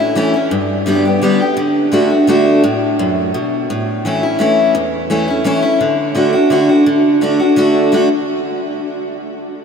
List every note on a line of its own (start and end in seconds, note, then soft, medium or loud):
0.00 0.12 A2 medium
0.00 0.16 C#4 medium
0.00 0.15 E4 medium
0.15 0.33 E3 medium
0.15 0.34 A3 medium
0.15 0.34 C#4 medium
0.15 0.33 E4 loud
0.34 0.51 C#4 medium
0.34 0.50 E4 medium
0.51 1.19 G2 medium
0.86 1.04 D3 medium
0.86 1.04 G3 medium
0.86 1.05 B3 medium
0.86 1.04 G4 loud
1.05 1.22 B3 soft
1.05 1.21 G4 medium
1.22 1.39 D3 medium
1.22 1.40 G3 medium
1.22 1.40 B3 loud
1.22 1.38 G4 loud
1.40 1.57 B3 medium
1.40 1.56 G4 medium
1.57 1.90 D3 medium
1.92 2.10 D3 medium
1.92 2.10 A3 medium
1.92 2.11 D4 medium
1.92 2.08 F#4 medium
2.10 2.28 D4 soft
2.10 2.27 F#4 medium
2.27 2.61 D3 medium
2.27 2.62 A3 medium
2.27 2.62 D4 medium
2.27 2.62 F#4 loud
2.63 3.31 A2 medium
2.99 3.33 F#2 medium
3.34 3.68 B2 medium
3.70 4.37 A2 medium
4.05 4.22 E3 medium
4.05 4.23 A3 medium
4.05 4.23 C#4 medium
4.05 4.22 E4 loud
4.23 4.40 C#4 soft
4.23 4.39 E4 medium
4.39 4.73 E3 medium
4.39 4.73 A3 medium
4.39 4.74 C#4 medium
4.39 4.74 E4 loud
4.75 5.42 E2 medium
5.10 5.28 E3 medium
5.10 5.28 A3 medium
5.10 5.28 C#4 medium
5.10 5.27 E4 medium
5.28 5.45 C#4 soft
5.28 5.45 E4 medium
5.44 5.63 E3 medium
5.44 5.63 A3 loud
5.44 5.64 C#4 loud
5.44 5.61 E4 loud
5.62 5.81 C#4 soft
5.62 5.79 E4 medium
5.81 6.13 D3 medium
6.15 6.33 D3 medium
6.15 6.33 A3 medium
6.15 6.34 D4 medium
6.15 6.32 F#4 medium
6.33 6.51 D4 soft
6.33 6.50 F#4 medium
6.50 6.68 D3 medium
6.50 6.69 A3 medium
6.50 6.69 D4 medium
6.50 6.68 F#4 medium
6.69 6.87 D4 medium
6.69 6.86 F#4 medium
6.86 7.20 D3 medium
7.21 7.39 D3 medium
7.21 7.40 A3 medium
7.21 7.40 D4 medium
7.21 7.38 F#4 medium
7.39 7.57 D4 soft
7.39 7.56 F#4 medium
7.56 7.91 D3 medium
7.56 7.91 A3 medium
7.56 7.91 D4 medium
7.56 7.92 F#4 loud
7.92 8.07 D3 medium
7.92 8.07 A3 medium
7.92 8.08 D4 medium
7.92 8.08 F#4 medium